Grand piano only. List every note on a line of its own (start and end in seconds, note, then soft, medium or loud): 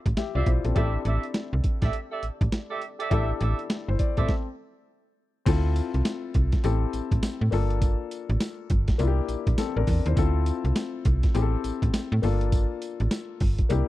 0.00 0.13 C4 medium
0.00 0.13 E4 medium
0.00 0.13 F4 medium
0.00 0.14 A4 medium
0.17 0.35 G4 medium
0.17 0.34 E5 medium
0.35 0.46 F4 medium
0.35 0.46 D5 medium
0.47 0.64 E4 soft
0.47 0.64 C5 medium
0.65 0.93 C4 medium
0.65 0.76 A4 medium
0.75 3.07 D4 medium
0.75 3.07 E4 medium
0.75 3.07 G4 medium
0.75 3.08 A4 medium
3.10 3.40 D4 medium
3.10 3.40 E4 medium
3.10 3.40 G4 medium
3.10 3.41 A4 medium
3.88 3.99 E4 medium
3.88 3.99 C5 medium
3.99 4.17 D5 medium
4.18 4.46 C4 medium
4.18 4.46 A4 medium
5.45 6.61 C4 medium
5.45 6.62 E4 medium
5.45 6.62 F4 medium
5.45 6.62 A4 medium
6.64 7.52 C4 medium
6.64 7.52 E4 medium
6.64 7.53 G4 medium
6.64 7.52 A4 medium
7.51 8.96 A#3 medium
7.51 8.96 D4 medium
7.51 8.97 F4 medium
7.51 8.97 A4 medium
8.98 10.14 A#3 medium
8.98 9.57 D4 medium
8.98 9.57 E4 medium
8.98 9.08 F4 medium
9.07 9.61 G4 medium
9.59 9.76 C4 medium
9.59 9.76 A4 medium
9.77 10.05 D4 medium
9.77 10.05 A#4 medium
10.06 10.15 E4 medium
10.06 10.34 C5 medium
10.16 11.32 C4 medium
10.16 11.32 E4 medium
10.16 11.33 F4 medium
10.16 11.33 A4 medium
11.34 12.23 C4 medium
11.34 12.23 E4 medium
11.34 12.23 G4 medium
11.34 11.43 G#4 medium
11.42 12.23 A4 medium
12.22 13.67 A#3 medium
12.22 13.67 D4 medium
12.22 13.67 F4 medium
12.22 13.68 A4 medium
13.69 13.88 A#3 medium
13.69 13.88 D4 medium
13.69 13.88 E4 medium
13.69 13.88 G4 medium